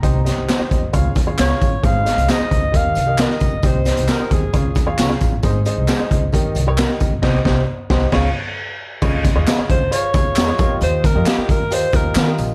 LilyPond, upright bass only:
\new Staff \with { instrumentName = "Upright bass" } { \clef bass \time 4/4 \key des \lydian \tempo 4 = 134 c,8. c,16 r8 ees,8 des,8 ees,8 des,8 a,,8 | aes,,8. c,16 r8 des,8 ees,8 c,8. r16 des,16 des,16 | c,8. c,16 r8 ees,8 des,8 ees,8 des,8 a,,8 | aes,,8. c,16 r8 des,8 ees,8 c,8. r16 des,16 des,16 |
c,8 c,8 r8 c,8 des,8 r4. | des,8. ees,16 r8 des,8 r8 des,8 fes,8 ees,8 | ees,8. f,16 r8 ees,4 ees,8 ees8 bes,,8 | }